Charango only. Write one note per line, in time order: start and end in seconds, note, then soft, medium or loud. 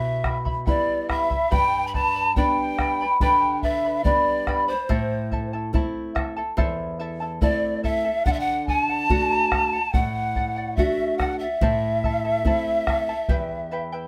0.00 0.24 E4 medium
0.00 0.24 G4 medium
0.00 0.24 E5 medium
0.00 0.23 G5 medium
0.00 0.24 B5 medium
0.24 0.45 E4 medium
0.24 0.45 E5 medium
0.24 0.46 G5 medium
0.24 0.44 B5 medium
0.45 0.65 E4 soft
0.45 0.65 E5 medium
0.45 0.67 B5 soft
0.66 1.08 E4 medium
0.66 1.08 E5 medium
0.66 1.07 G5 medium
0.66 1.09 B5 medium
1.09 1.30 E4 medium
1.09 1.29 E5 medium
1.09 1.30 G5 medium
1.09 1.28 B5 medium
1.30 1.51 E4 soft
1.30 1.51 E5 soft
1.30 1.50 B5 medium
1.51 1.93 G4 medium
1.51 1.93 B4 medium
1.51 1.94 D5 medium
1.51 1.93 G5 medium
1.51 1.94 B5 medium
1.94 2.15 B4 medium
1.94 2.15 D5 medium
1.94 2.15 G5 medium
1.94 2.14 B5 medium
2.15 2.36 B4 soft
2.15 2.37 D5 soft
2.15 2.36 B5 medium
2.36 2.79 B4 medium
2.36 2.79 D5 medium
2.36 2.78 G5 medium
2.36 2.79 B5 medium
2.80 3.00 B4 medium
2.80 3.01 D5 medium
2.80 3.00 G5 medium
2.80 3.00 B5 medium
3.01 3.21 B4 soft
3.01 3.21 D5 soft
3.01 3.21 B5 soft
3.21 3.63 G4 medium
3.21 3.63 B4 medium
3.21 3.63 D5 medium
3.21 3.62 G5 medium
3.21 3.64 B5 medium
3.64 3.84 B4 medium
3.64 3.84 D5 medium
3.64 3.84 G5 medium
3.64 3.83 B5 medium
3.85 4.04 B4 soft
3.85 4.05 D5 medium
3.85 4.05 B5 medium
4.05 4.46 B4 medium
4.05 4.47 D5 medium
4.05 4.46 G5 medium
4.05 4.47 B5 medium
4.47 4.68 B4 medium
4.47 4.68 D5 medium
4.47 4.68 G5 medium
4.47 4.67 B5 medium
4.68 4.89 B4 soft
4.68 4.90 D5 soft
4.68 4.89 B5 medium
4.89 5.31 E4 medium
4.89 5.31 A4 medium
4.89 5.31 C5 medium
4.89 5.30 E5 medium
4.89 5.32 A5 medium
5.32 5.53 E4 medium
5.32 5.52 A4 medium
5.32 5.53 E5 medium
5.32 5.52 A5 medium
5.53 5.73 E4 soft
5.53 5.73 A4 soft
5.53 5.73 A5 medium
5.74 6.14 E4 medium
5.74 6.15 A4 medium
5.74 6.14 E5 medium
5.74 6.15 A5 medium
6.15 6.37 E4 medium
6.15 6.36 A4 medium
6.15 6.36 E5 medium
6.15 6.35 A5 medium
6.37 6.56 E4 soft
6.37 6.57 A4 medium
6.37 6.57 A5 medium
6.57 6.99 E4 medium
6.57 6.99 A4 medium
6.57 6.99 C5 medium
6.57 6.98 E5 medium
6.57 7.00 A5 medium
7.00 7.21 E4 medium
7.00 7.20 A4 medium
7.00 7.20 E5 medium
7.00 7.19 A5 medium
7.20 7.41 E4 soft
7.20 7.42 A4 soft
7.20 7.41 A5 medium
7.42 7.83 E4 medium
7.42 7.83 A4 medium
7.42 7.82 E5 medium
7.42 7.84 A5 medium
7.83 8.05 E4 medium
7.83 8.04 A4 medium
7.83 8.04 E5 medium
7.83 8.04 A5 medium
8.05 8.26 E4 soft
8.05 8.25 A4 soft
8.05 8.26 A5 medium
8.26 8.67 A4 medium
8.26 8.68 D5 medium
8.26 8.69 F#5 medium
8.68 8.89 A4 medium
8.68 8.90 D5 medium
8.68 8.88 F#5 medium
8.89 9.10 D5 soft
8.89 9.10 F#5 medium
9.10 9.50 A4 medium
9.10 9.51 D5 medium
9.10 9.52 F#5 medium
9.51 9.73 A4 medium
9.51 9.73 D5 medium
9.51 9.71 F#5 medium
9.73 9.93 D5 soft
9.73 9.93 F#5 soft
9.93 10.34 A4 medium
9.93 10.35 D5 medium
9.93 10.36 F#5 medium
10.36 10.57 A4 medium
10.36 10.56 D5 medium
10.36 10.55 F#5 medium
10.56 10.77 D5 soft
10.56 10.77 F#5 medium
10.78 11.19 A4 medium
10.78 11.20 D5 medium
10.78 11.20 F#5 medium
11.20 11.41 A4 medium
11.20 11.41 D5 medium
11.20 11.40 F#5 medium
11.41 11.62 D5 soft
11.41 11.62 F#5 medium
11.62 12.03 E4 medium
11.62 12.04 A4 medium
11.62 12.04 C5 medium
11.62 12.03 E5 medium
11.62 12.04 A5 medium
12.04 12.25 E4 medium
12.04 12.24 A4 medium
12.04 12.24 E5 medium
12.04 12.24 A5 medium
12.25 12.45 E4 soft
12.25 12.45 A4 soft
12.25 12.45 A5 soft
12.46 12.87 E4 medium
12.46 12.88 A4 medium
12.46 12.87 E5 medium
12.46 12.88 A5 medium
12.88 13.09 E4 medium
12.88 13.09 A4 medium
12.88 13.08 E5 medium
12.88 13.08 A5 medium
13.09 13.28 E4 soft
13.09 13.29 A4 medium
13.09 13.29 A5 medium
13.29 13.70 E4 medium
13.29 13.71 G4 medium
13.29 13.71 B4 medium
13.29 13.70 E5 medium
13.29 13.71 G5 medium
13.71 13.92 E4 medium
13.71 13.92 B4 medium
13.71 13.92 E5 medium
13.71 13.91 G5 medium
13.92 14.08 E4 soft
13.92 14.08 B4 medium
13.92 14.08 G5 medium